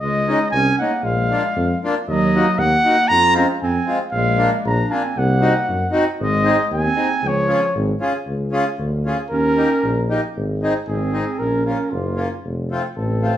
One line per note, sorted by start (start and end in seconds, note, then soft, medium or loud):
0.01 0.35 C#2 medium
0.01 0.50 G#3 loud
0.01 0.49 D#5 loud
0.28 0.39 G#3 medium
0.28 0.39 C#4 medium
0.28 0.39 D#4 medium
0.51 0.70 C2 medium
0.51 0.78 C#4 medium
0.51 0.76 G#5 loud
0.78 0.92 G#3 soft
0.78 1.06 A#3 medium
0.78 0.92 C#4 soft
0.78 0.91 D#4 soft
0.78 1.06 F#5 medium
1.03 1.37 A#1 medium
1.03 1.82 G#3 medium
1.03 1.82 F5 loud
1.31 1.42 A#3 medium
1.31 1.42 D4 medium
1.31 1.43 F4 medium
1.56 1.73 F2 medium
1.84 1.94 A#3 medium
1.84 1.95 D4 medium
1.84 1.95 F4 medium
2.07 2.41 D#2 medium
2.07 2.64 F#3 loud
2.07 2.60 D#5 loud
2.35 2.46 A#3 medium
2.35 2.46 D#4 medium
2.35 2.46 F#4 medium
2.58 2.75 D#2 medium
2.58 3.10 F#5 loud
2.63 3.14 A#3 medium
2.85 2.96 A#3 medium
2.85 2.96 D#4 soft
2.85 2.96 F#4 medium
3.08 3.44 F2 medium
3.08 3.35 A#5 loud
3.13 3.37 F4 loud
3.34 3.47 G#3 medium
3.34 3.46 C4 medium
3.34 3.49 C#4 medium
3.34 3.46 F4 medium
3.34 3.48 A#5 loud
3.62 3.79 F2 medium
3.62 3.99 C4 medium
3.62 3.98 G#5 medium
3.87 3.99 G#3 medium
3.87 3.99 C4 soft
3.87 3.99 F4 medium
4.11 4.47 A#1 medium
4.11 4.61 F5 loud
4.16 4.63 G#3 loud
4.38 4.50 A#3 medium
4.38 4.50 D4 medium
4.38 4.50 F4 medium
4.66 4.83 A#1 medium
4.66 4.95 D4 medium
4.66 4.93 A#5 medium
4.91 5.03 A#3 medium
4.91 5.18 C4 medium
4.91 5.03 D4 soft
4.91 5.03 F4 medium
4.91 5.19 G#5 medium
5.16 5.51 C2 loud
5.16 5.94 A#3 medium
5.16 5.95 F#5 loud
5.41 5.53 C4 medium
5.41 5.54 D#4 medium
5.41 5.53 F#4 medium
5.69 5.86 F#2 medium
5.92 6.05 C4 medium
5.92 6.04 D#4 medium
5.92 6.05 F#4 medium
6.20 6.53 G#1 medium
6.20 6.68 G#3 loud
6.20 6.68 D#5 loud
6.43 6.56 C4 medium
6.43 6.57 D#4 medium
6.43 6.57 G#4 medium
6.71 6.88 D#2 medium
6.71 7.29 G#5 loud
6.76 7.27 C4 medium
6.95 7.08 C4 medium
6.95 7.08 D#4 medium
6.95 7.08 G#4 medium
7.23 7.57 C#2 medium
7.23 7.76 F3 medium
7.27 7.77 C#5 loud
7.48 7.60 C#4 medium
7.48 7.60 F4 medium
7.48 7.61 G#4 medium
7.76 7.93 G#1 loud
8.01 8.13 C#4 medium
8.01 8.13 F4 medium
8.01 8.13 G#4 medium
8.27 8.61 C#2 medium
8.52 8.64 C#4 medium
8.52 8.65 F4 medium
8.52 8.65 G#4 medium
8.79 9.13 D2 medium
9.06 9.17 C#4 medium
9.06 9.17 F4 medium
9.06 9.18 G#4 medium
9.31 9.65 D#2 medium
9.31 10.06 C#4 loud
9.31 10.05 A#4 loud
9.57 9.69 A#3 medium
9.57 9.69 D#4 soft
9.57 9.69 G4 medium
9.83 10.17 A#1 medium
10.10 10.21 A#3 medium
10.10 10.21 D#4 soft
10.10 10.21 G4 medium
10.36 10.69 G#1 medium
10.63 10.73 C4 medium
10.63 10.74 D#4 medium
10.63 10.74 G#4 medium
10.88 11.21 G#1 medium
10.88 11.40 G#4 medium
10.92 11.45 C4 medium
11.13 11.24 C4 medium
11.13 11.25 D#4 soft
11.13 11.25 G#4 medium
11.39 11.73 A#1 medium
11.39 11.65 A#4 medium
11.44 11.65 C#4 loud
11.66 11.77 A#3 medium
11.66 11.95 C#4 medium
11.66 11.78 C#4 medium
11.66 11.78 F4 medium
11.66 11.92 A#4 medium
11.90 12.26 F#1 medium
11.90 12.45 A#3 medium
11.90 12.43 F4 medium
12.16 12.29 A#3 soft
12.16 12.29 C#4 soft
12.16 12.29 F4 medium
12.44 12.78 F1 medium
12.71 12.82 A3 medium
12.71 12.83 C4 medium
12.71 12.83 F4 medium
12.97 13.30 A1 medium
12.97 13.34 C4 medium
12.97 13.33 A4 medium
13.22 13.34 A3 medium
13.22 13.35 C4 soft
13.22 13.34 F4 medium